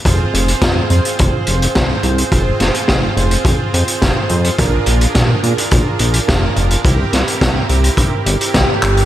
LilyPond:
<<
  \new Staff \with { instrumentName = "Analog synth lead" } { \time 4/4 \key f \dorian \tempo 4 = 106 r1 | r1 | r1 | r2. g'4 | }
  \new Staff \with { instrumentName = "Analog polysynth" } { \time 4/4 \key f \dorian <c' f' aes' c''>4. <c' f' aes' c''>2~ <c' f' aes' c''>8 | <c' f' aes' c''>4. <c' f' aes' c''>2~ <c' f' aes' c''>8 | <d' f' aes' bes'>4. <d' f' aes' bes'>2~ <d' f' aes' bes'>8 | <c' e' g' bes'>4. <c' e' g' bes'>4~ <c' e' g' bes'>16 <c' e' g' bes'>4~ <c' e' g' bes'>16 | }
  \new Staff \with { instrumentName = "Analog synth bass" } { \clef bass \time 4/4 \key f \dorian f,,8 f,,8 f,8 f,8 f,,8 f,,8 c,8 c,8 | f,,8 f,,8 f,,8 f,,8 f,8 f,8 f,,8 f,8 | bes,,8 bes,,8 bes,8 bes,8 bes,,8 bes,,8 f,,8 f,,8 | c,8 c,8 c,8 c,8 g,,8 g,,8 c,8 g,,8 | }
  \new DrumStaff \with { instrumentName = "Drums" } \drummode { \time 4/4 <hh bd>8 hh16 hh16 <hh bd sn>8 hh16 hh16 <hh bd>8 hh16 hh16 <hh bd sn>8 hh16 hh16 | <hh bd>8 <hh sn>16 hh16 <hh bd sn>8 hh16 hh16 <hh bd>8 hh16 hh16 <hh bd sn>8 hh16 hh16 | <hh bd>8 hh16 hh16 <hh bd sn>8 hh16 hh16 <hh bd>8 hh16 hh16 <hh bd sn>8 hh16 hh16 | <hh bd>8 <hh sn>16 hh16 <hh bd sn>8 hh16 hh16 <hh bd>8 hh16 hh16 <hh bd sn>8 <hc hh>16 hh16 | }
>>